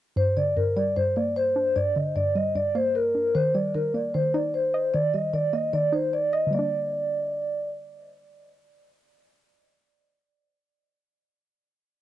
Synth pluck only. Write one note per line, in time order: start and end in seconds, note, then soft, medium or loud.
0.16 0.55 G2 loud
0.37 1.36 D3 medium
0.57 0.96 G2 medium
0.76 1.76 G3 medium
0.97 1.75 G2 medium
1.17 2.16 A#3 medium
1.56 2.55 D4 medium
1.76 2.14 G2 loud
1.96 2.95 D3 medium
2.16 2.54 G2 medium
2.35 3.35 G3 medium
2.55 3.35 G2 medium
2.75 3.35 A#3 medium
3.15 3.35 D4 medium
3.35 3.74 D#3 medium
3.55 4.54 G3 medium
3.75 4.13 D#3 medium
3.94 4.94 A#3 medium
4.15 4.93 D#3 medium
4.34 5.33 D#4 medium
4.74 5.73 D#5 medium
4.94 5.32 D#3 medium
5.14 6.13 G3 medium
5.33 5.72 D#3 medium
5.53 6.53 A#3 medium
5.73 6.53 D#3 medium
5.92 6.52 D#4 medium
6.33 6.53 D#5 medium
6.47 10.90 D3 medium
6.47 10.94 G3 medium
6.55 10.98 A#3 medium
6.59 11.02 D4 medium